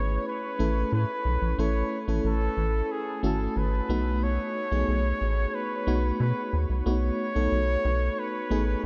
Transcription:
Already playing: G#1 A3 C#4 E4 G#4 B4 C#5
0.28 B4
0.59 A1 A3 C#4 E4 A4
0.92 A2 B4
1.25 B1
1.42 A#1
1.58 A1 A3 C#4 E4 A4 C#5
2.08 A1 A3 C#4 E4 A4
2.24 A1 A4
2.57 A1
2.92 G#4
3.23 G#1 A3 C#4 E4 F#4 A4
3.56 G#1 B4
3.89 B1 A3 B3 D#4 F#4
4.23 C#5
4.71 B1 A3 B3 D#4 G#4
4.88 B1
5.21 A1
5.55 B4
5.87 B1 A3 B3 D#4 F#4
6.20 B2 B4
6.53 D#2
6.69 C2
6.86 B1 A3 B3 D#4 F#4 C#5
7.35 B1 A3 B3 D#4 A4
7.52 B1
7.85 B1
8.19 B4
8.50 A1 A3 B3 D#4 G#4

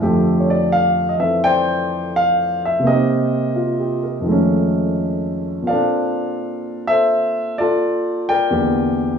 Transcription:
0.01 F2 D3 A3 G4
0.40 C#5
0.50 D5
0.72 F5
1.09 D#5
1.18 E3 C4 A4 E5
1.44 C5 D5 G5
2.16 F5
2.65 E5
2.80 C3 A#3
2.87 C4 D#4 G4 A#4 D#5
3.56 F4
3.80 G4
4.03 A#4
4.20 F2 D#3
4.26 G#3 A3
4.32 C#4
5.62 A#2 A#3
5.67 C4 A4 D5 F5
5.74 D4
6.87 A4 C5 E5
7.58 F4 A4 D5
8.29 A#4 D5 G5
8.51 E2 D3 A#3 G4

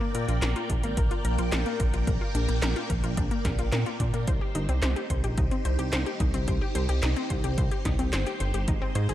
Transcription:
Already playing: A#3 A#4 D5 G5
0.01 A#3
0.15 A#2 A#4, closed hi-hat
0.28 A#1 F4, closed hi-hat
0.42 A#1 A#4, snare, clap, closed hi-hat
0.56 F4, closed hi-hat
0.70 A#1 D4, kick, closed hi-hat
0.83 G#1 A#3, closed hi-hat
0.97 A#1 A#4, kick, closed hi-hat
1.11 F4, closed hi-hat
1.25 A#1 A#4, closed hi-hat
1.38 A#1 F4, closed hi-hat
1.52 A#1 D4, snare, clap, closed hi-hat
1.66 A#3, closed hi-hat
1.80 A#1 A#4, kick, closed hi-hat
1.93 A#1 F4, closed hi-hat
2.07 A#1 A#4, kick, closed hi-hat
2.21 F4
2.35 A#1 D4, closed hi-hat
2.49 A#1 A#3, closed hi-hat
2.62 A#1 A#4, snare, clap, closed hi-hat
2.76 F4, closed hi-hat
2.90 A#1 A#4, kick, closed hi-hat
3.04 A#1 F4, closed hi-hat
3.17 A#1 D4, kick, closed hi-hat
3.31 A#3, closed hi-hat
3.45 A#1 A#4, kick, snare, closed hi-hat
3.59 A#1 F4, closed hi-hat
3.72 A#2 A#4, snare, clap, closed hi-hat
3.86 F4, closed hi-hat
4.00 A#2 D4, kick, closed hi-hat
4.14 A#2 A#3, closed hi-hat
4.27 C2 D#4 G4 C5, kick, closed hi-hat
4.41 G4
4.55 G1 D#4, closed hi-hat
4.69 C2 C4, closed hi-hat
4.82 C2 C5, snare, clap, closed hi-hat
4.96 G4, closed hi-hat
5.10 C2 C5, kick, closed hi-hat
5.24 A#1 G4, closed hi-hat
5.38 C2 D#4, kick, closed hi-hat
5.51 C4, closed hi-hat
5.65 C2 C5, closed hi-hat
5.79 C2 G4, closed hi-hat
5.93 C2 C5, snare, clap, closed hi-hat
6.06 G4, closed hi-hat
6.20 C2 D#4, kick, closed hi-hat
6.34 C2 C4, closed hi-hat
6.48 C2 C5, kick, closed hi-hat
6.62 G4
6.75 C2 C5, closed hi-hat
6.89 C2 G4, closed hi-hat
7.03 C2 D#4, snare, clap, closed hi-hat
7.16 C4, closed hi-hat
7.30 C2 C5, kick, closed hi-hat
7.44 C2 G4, closed hi-hat
7.58 C2 C5, kick, closed hi-hat
7.71 G4, closed hi-hat
7.85 C2 D#4, kick, snare, closed hi-hat
7.99 C2 C4, closed hi-hat
8.13 G1 C5, snare, clap, closed hi-hat
8.26 G4, closed hi-hat
8.40 G1 C5, closed hi-hat
8.54 G1 G4, closed hi-hat
8.68 G#1 G#3 D#4 G#4 D#5, kick, closed hi-hat
8.82 C4
8.95 G#2 C5, closed hi-hat
9.09 G#1 G#4, closed hi-hat

